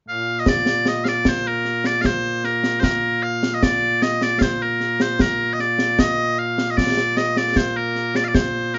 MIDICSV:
0, 0, Header, 1, 3, 480
1, 0, Start_track
1, 0, Key_signature, -2, "major"
1, 0, Tempo, 789474
1, 282, Time_signature, 2, 2, 24, 8
1, 5342, End_track
2, 0, Start_track
2, 0, Title_t, "Bagpipes"
2, 0, Program_c, 0, 109
2, 52, Note_on_c, 0, 46, 89
2, 52, Note_on_c, 0, 58, 89
2, 52, Note_on_c, 0, 77, 88
2, 241, Note_off_c, 0, 77, 0
2, 241, Note_on_c, 0, 75, 79
2, 293, Note_off_c, 0, 75, 0
2, 293, Note_on_c, 0, 74, 98
2, 534, Note_off_c, 0, 74, 0
2, 534, Note_on_c, 0, 75, 80
2, 635, Note_off_c, 0, 75, 0
2, 635, Note_on_c, 0, 77, 85
2, 658, Note_off_c, 0, 77, 0
2, 658, Note_on_c, 0, 74, 85
2, 781, Note_off_c, 0, 74, 0
2, 781, Note_on_c, 0, 72, 97
2, 895, Note_off_c, 0, 72, 0
2, 895, Note_on_c, 0, 70, 90
2, 1132, Note_off_c, 0, 70, 0
2, 1132, Note_on_c, 0, 74, 88
2, 1224, Note_off_c, 0, 74, 0
2, 1224, Note_on_c, 0, 77, 98
2, 1251, Note_off_c, 0, 77, 0
2, 1251, Note_on_c, 0, 72, 98
2, 1488, Note_off_c, 0, 72, 0
2, 1488, Note_on_c, 0, 70, 77
2, 1701, Note_off_c, 0, 70, 0
2, 1701, Note_on_c, 0, 72, 89
2, 1726, Note_off_c, 0, 72, 0
2, 1726, Note_on_c, 0, 70, 89
2, 1962, Note_off_c, 0, 70, 0
2, 1962, Note_on_c, 0, 77, 89
2, 2155, Note_off_c, 0, 77, 0
2, 2155, Note_on_c, 0, 75, 74
2, 2205, Note_off_c, 0, 75, 0
2, 2205, Note_on_c, 0, 74, 110
2, 2446, Note_off_c, 0, 74, 0
2, 2446, Note_on_c, 0, 75, 78
2, 2570, Note_off_c, 0, 75, 0
2, 2570, Note_on_c, 0, 74, 94
2, 2668, Note_off_c, 0, 74, 0
2, 2668, Note_on_c, 0, 77, 85
2, 2688, Note_off_c, 0, 77, 0
2, 2688, Note_on_c, 0, 72, 85
2, 2809, Note_off_c, 0, 72, 0
2, 2809, Note_on_c, 0, 70, 79
2, 3051, Note_off_c, 0, 70, 0
2, 3051, Note_on_c, 0, 72, 88
2, 3169, Note_off_c, 0, 72, 0
2, 3169, Note_on_c, 0, 70, 93
2, 3363, Note_off_c, 0, 70, 0
2, 3363, Note_on_c, 0, 75, 74
2, 3405, Note_off_c, 0, 75, 0
2, 3405, Note_on_c, 0, 74, 83
2, 3644, Note_off_c, 0, 74, 0
2, 3644, Note_on_c, 0, 75, 96
2, 3884, Note_off_c, 0, 75, 0
2, 3884, Note_on_c, 0, 77, 79
2, 4078, Note_off_c, 0, 77, 0
2, 4078, Note_on_c, 0, 75, 72
2, 4115, Note_off_c, 0, 75, 0
2, 4115, Note_on_c, 0, 74, 102
2, 4358, Note_off_c, 0, 74, 0
2, 4358, Note_on_c, 0, 75, 80
2, 4482, Note_off_c, 0, 75, 0
2, 4482, Note_on_c, 0, 74, 90
2, 4601, Note_off_c, 0, 74, 0
2, 4601, Note_on_c, 0, 72, 90
2, 4721, Note_off_c, 0, 72, 0
2, 4721, Note_on_c, 0, 70, 79
2, 4961, Note_off_c, 0, 70, 0
2, 4961, Note_on_c, 0, 74, 87
2, 5012, Note_off_c, 0, 74, 0
2, 5012, Note_on_c, 0, 77, 70
2, 5034, Note_off_c, 0, 77, 0
2, 5034, Note_on_c, 0, 74, 70
2, 5074, Note_off_c, 0, 74, 0
2, 5074, Note_on_c, 0, 72, 92
2, 5316, Note_off_c, 0, 72, 0
2, 5316, Note_on_c, 0, 70, 80
2, 5342, Note_off_c, 0, 46, 0
2, 5342, Note_off_c, 0, 58, 0
2, 5342, Note_off_c, 0, 70, 0
2, 5342, End_track
3, 0, Start_track
3, 0, Title_t, "Drums"
3, 281, Note_on_c, 9, 35, 65
3, 281, Note_on_c, 9, 38, 101
3, 342, Note_off_c, 9, 35, 0
3, 342, Note_off_c, 9, 38, 0
3, 401, Note_on_c, 9, 38, 75
3, 462, Note_off_c, 9, 38, 0
3, 520, Note_on_c, 9, 38, 77
3, 581, Note_off_c, 9, 38, 0
3, 639, Note_on_c, 9, 38, 67
3, 700, Note_off_c, 9, 38, 0
3, 761, Note_on_c, 9, 35, 55
3, 761, Note_on_c, 9, 38, 93
3, 821, Note_off_c, 9, 35, 0
3, 821, Note_off_c, 9, 38, 0
3, 1002, Note_on_c, 9, 38, 27
3, 1063, Note_off_c, 9, 38, 0
3, 1120, Note_on_c, 9, 38, 67
3, 1181, Note_off_c, 9, 38, 0
3, 1242, Note_on_c, 9, 35, 52
3, 1242, Note_on_c, 9, 38, 78
3, 1303, Note_off_c, 9, 35, 0
3, 1303, Note_off_c, 9, 38, 0
3, 1482, Note_on_c, 9, 38, 26
3, 1543, Note_off_c, 9, 38, 0
3, 1602, Note_on_c, 9, 38, 64
3, 1663, Note_off_c, 9, 38, 0
3, 1721, Note_on_c, 9, 35, 52
3, 1721, Note_on_c, 9, 38, 83
3, 1782, Note_off_c, 9, 35, 0
3, 1782, Note_off_c, 9, 38, 0
3, 2085, Note_on_c, 9, 38, 70
3, 2146, Note_off_c, 9, 38, 0
3, 2204, Note_on_c, 9, 35, 61
3, 2204, Note_on_c, 9, 38, 101
3, 2265, Note_off_c, 9, 35, 0
3, 2265, Note_off_c, 9, 38, 0
3, 2445, Note_on_c, 9, 38, 73
3, 2506, Note_off_c, 9, 38, 0
3, 2563, Note_on_c, 9, 38, 65
3, 2624, Note_off_c, 9, 38, 0
3, 2681, Note_on_c, 9, 35, 54
3, 2681, Note_on_c, 9, 38, 101
3, 2742, Note_off_c, 9, 35, 0
3, 2742, Note_off_c, 9, 38, 0
3, 2920, Note_on_c, 9, 38, 28
3, 2981, Note_off_c, 9, 38, 0
3, 3040, Note_on_c, 9, 38, 81
3, 3100, Note_off_c, 9, 38, 0
3, 3158, Note_on_c, 9, 35, 63
3, 3158, Note_on_c, 9, 38, 94
3, 3219, Note_off_c, 9, 35, 0
3, 3219, Note_off_c, 9, 38, 0
3, 3400, Note_on_c, 9, 38, 29
3, 3461, Note_off_c, 9, 38, 0
3, 3518, Note_on_c, 9, 38, 69
3, 3579, Note_off_c, 9, 38, 0
3, 3640, Note_on_c, 9, 35, 51
3, 3640, Note_on_c, 9, 38, 93
3, 3701, Note_off_c, 9, 35, 0
3, 3701, Note_off_c, 9, 38, 0
3, 4001, Note_on_c, 9, 38, 69
3, 4062, Note_off_c, 9, 38, 0
3, 4120, Note_on_c, 9, 35, 56
3, 4120, Note_on_c, 9, 38, 77
3, 4180, Note_off_c, 9, 35, 0
3, 4180, Note_off_c, 9, 38, 0
3, 4240, Note_on_c, 9, 38, 62
3, 4301, Note_off_c, 9, 38, 0
3, 4358, Note_on_c, 9, 38, 66
3, 4419, Note_off_c, 9, 38, 0
3, 4479, Note_on_c, 9, 38, 61
3, 4540, Note_off_c, 9, 38, 0
3, 4597, Note_on_c, 9, 35, 52
3, 4597, Note_on_c, 9, 38, 90
3, 4657, Note_off_c, 9, 35, 0
3, 4657, Note_off_c, 9, 38, 0
3, 4836, Note_on_c, 9, 38, 25
3, 4897, Note_off_c, 9, 38, 0
3, 4955, Note_on_c, 9, 38, 75
3, 5016, Note_off_c, 9, 38, 0
3, 5074, Note_on_c, 9, 35, 58
3, 5074, Note_on_c, 9, 38, 94
3, 5135, Note_off_c, 9, 35, 0
3, 5135, Note_off_c, 9, 38, 0
3, 5316, Note_on_c, 9, 38, 25
3, 5342, Note_off_c, 9, 38, 0
3, 5342, End_track
0, 0, End_of_file